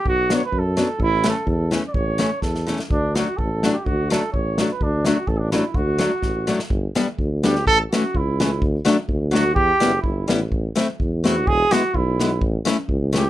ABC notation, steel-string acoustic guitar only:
X:1
M:2/4
L:1/8
Q:"Swing" 1/4=126
K:D
V:1 name="Steel-string acoustic guitar"
z [F,B,D] z [F,B,D] | z [E,A,C] z [E,A,C] | z [E,A,C] z [E,A,C] | z [F,A,D] z [F,A,D] |
z [F,A,D] z [F,A,D] | z [F,A,D] z [F,A,D] | z [F,A,D] z [F,A,D] | [K:G] z [G,B,D] z [G,B,D] |
z [E,A,^C] z [E,A,C] | z [F,A,D] z [F,A,D] | z [G,B,E] z [G,B,E] | z [A,CE] z [A,CE] |
z [^G,B,E] z [G,B,E] | z [A,^CE] z [A,CE] |]